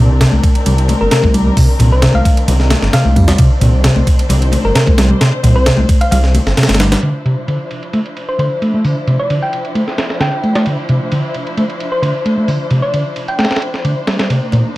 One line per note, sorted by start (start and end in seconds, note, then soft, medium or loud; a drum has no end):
0.00 0.26 C2 loud
0.00 6.99 D#3 medium
0.00 6.99 C4 medium
0.00 6.99 D4 medium
0.00 3.13 A#4 medium
0.21 0.30 C3 medium
0.21 snare loud
0.21 ride medium
0.32 0.40 C2 medium
0.32 high conga medium
0.44 kick medium
0.44 ride medium
0.55 ride soft
0.66 0.94 C2 medium
0.66 0.72 G3 medium
0.66 ride medium
0.66 low conga medium
0.78 ride soft
0.88 ride medium
0.88 high conga medium
0.88 low conga medium
1.01 1.08 G1 medium
1.01 1.08 A#4 medium
1.11 1.21 C3 medium
1.11 1.20 A#4 medium
1.11 snare loud
1.11 ride medium
1.23 1.51 C2 medium
1.23 kick medium
1.23 high conga medium
1.34 1.45 G3 medium
1.34 ride medium
1.47 1.54 G3 medium
1.57 1.66 C3 loud
1.57 kick loud
1.57 open hi-hat medium
1.79 2.07 C2 loud
1.79 1.89 A#2 loud
1.79 ride medium
1.79 low conga medium
1.92 2.07 C5 medium
2.02 2.11 C3 medium
2.02 snare loud
2.02 ride medium
2.14 2.21 C2 medium
2.14 2.29 F5 medium
2.14 high conga medium
2.25 kick medium
2.25 ride medium
2.37 ride soft
2.48 2.75 C2 loud
2.48 2.53 G3 medium
2.48 ride medium
2.48 low conga medium
2.60 snare soft
2.70 snare loud
2.70 ride medium
2.70 high conga medium
2.70 low conga medium
2.82 2.89 G1 medium
2.82 snare medium
2.93 3.02 C3 medium
2.93 3.28 F5 medium
2.93 snare loud
2.93 ride medium
3.05 3.32 C2 medium
3.05 high conga medium
3.16 3.27 G3 medium
3.16 6.99 C5 medium
3.16 kick medium
3.16 ride medium
3.28 3.36 G3 medium
3.28 snare loud
3.28 ride medium
3.38 3.48 C3 loud
3.38 kick loud
3.38 ride medium
3.61 3.89 C2 loud
3.61 3.70 A#2 loud
3.61 ride medium
3.61 low conga medium
3.84 3.93 C3 medium
3.84 snare loud
3.84 ride medium
3.96 4.03 C2 medium
3.96 high conga medium
4.07 kick medium
4.07 ride medium
4.19 ride soft
4.29 4.57 C2 loud
4.29 4.35 G3 medium
4.29 ride medium
4.29 low conga medium
4.42 ride soft
4.52 ride medium
4.52 high conga medium
4.52 low conga medium
4.65 4.71 G1 medium
4.65 4.72 A#4 medium
4.75 4.84 C3 medium
4.75 4.83 A#4 medium
4.75 snare loud
4.75 ride medium
4.87 5.14 C2 medium
4.87 kick loud
4.87 high conga medium
4.98 5.09 G3 medium
4.98 snare loud
4.98 ride medium
5.10 5.18 G3 medium
5.21 5.30 C3 loud
5.21 snare loud
5.21 ride medium
5.43 5.71 C2 loud
5.43 5.53 A#2 loud
5.43 ride medium
5.43 low conga medium
5.56 5.70 C5 medium
5.66 5.76 C3 medium
5.66 snare loud
5.66 ride medium
5.77 5.85 C2 medium
5.77 high conga medium
5.89 kick medium
5.89 ride medium
6.01 6.08 F5 medium
6.01 ride soft
6.11 6.39 C2 loud
6.11 6.17 G3 medium
6.11 6.19 F5 medium
6.11 ride medium
6.11 low conga medium
6.24 snare soft
6.34 ride medium
6.34 high conga medium
6.34 low conga medium
6.47 6.53 G1 medium
6.47 snare medium
6.57 6.66 C3 medium
6.57 snare medium
6.57 ride medium
6.63 snare medium
6.63 ride medium
6.68 6.96 G1 medium
6.68 snare medium
6.68 ride medium
6.68 high conga medium
6.74 snare medium
6.74 ride medium
6.80 6.91 G3 medium
6.80 snare loud
6.80 ride medium
6.92 7.00 G3 medium
6.92 snare loud
6.92 ride medium
7.03 7.12 D3 medium
7.03 14.04 F3 medium
7.03 14.77 D4 medium
7.03 14.04 E4 medium
7.03 14.77 C5 medium
7.03 ride medium
7.25 7.34 C3 medium
7.25 ride medium
7.48 7.57 D3 medium
7.48 ride medium
7.71 ride medium
7.83 ride soft
7.93 7.99 A3 medium
7.93 ride medium
8.06 ride soft
8.17 ride medium
8.29 8.35 C5 medium
8.39 8.48 D3 medium
8.39 8.47 C5 medium
8.39 ride medium
8.62 8.73 A3 medium
8.62 ride medium
8.74 8.82 A3 medium
8.85 8.93 D3 medium
8.85 open hi-hat medium
9.07 9.16 C3 medium
9.07 ride medium
9.19 9.34 D5 medium
9.30 9.39 D3 medium
9.30 ride medium
9.42 9.57 G5 medium
9.53 ride medium
9.65 ride soft
9.75 9.81 A3 medium
9.75 ride medium
9.88 snare soft
9.98 snare medium
9.98 ride medium
10.10 snare soft
10.20 10.29 D3 medium
10.20 10.56 G5 medium
10.20 snare medium
10.20 ride medium
10.44 10.54 A3 medium
10.44 ride medium
10.55 10.64 A3 medium
10.55 snare loud
10.55 ride medium
10.66 10.75 D3 medium
10.66 ride medium
10.89 10.98 C3 medium
10.89 ride medium
11.12 11.21 D3 medium
11.12 ride medium
11.34 ride medium
11.47 ride soft
11.57 11.63 A3 medium
11.57 ride medium
11.70 ride soft
11.80 ride medium
11.92 11.99 C5 medium
12.02 12.11 D3 medium
12.02 12.10 C5 medium
12.02 ride medium
12.26 12.36 A3 medium
12.26 ride medium
12.38 12.45 A3 medium
12.48 12.57 D3 medium
12.48 open hi-hat medium
12.71 12.80 C3 medium
12.71 ride medium
12.82 12.97 D5 medium
12.94 13.02 D3 medium
12.94 ride medium
13.16 ride medium
13.28 13.35 G5 medium
13.28 ride soft
13.39 13.44 A3 medium
13.39 13.47 G5 medium
13.39 snare medium
13.39 ride medium
13.45 snare medium
13.45 ride medium
13.51 snare medium
13.51 ride medium
13.56 snare medium
13.56 ride medium
13.62 ride medium
13.74 snare soft
13.85 13.93 D3 medium
13.85 ride medium
14.07 14.18 G3 medium
14.07 14.77 A#3 medium
14.07 14.77 D#4 medium
14.07 snare loud
14.07 ride medium
14.19 14.27 G3 medium
14.19 snare loud
14.19 ride medium
14.30 14.39 C3 medium
14.30 ride medium
14.52 14.62 A#2 loud
14.52 ride medium
14.52 muted conga soft
14.52 low conga medium